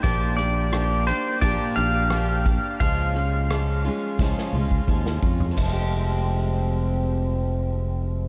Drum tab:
RD |----------------|----------------|x---------------|
HH |x-x-x-x-x-x-x-x-|x-x-x-x---------|----------------|
SD |----r-------r---|----r---oo---o--|----------------|
T2 |----------------|----------o-----|----------------|
FT |----------------|---------------o|----------------|
BD |o-------o-----o-|o-------o--oo-o-|o---------------|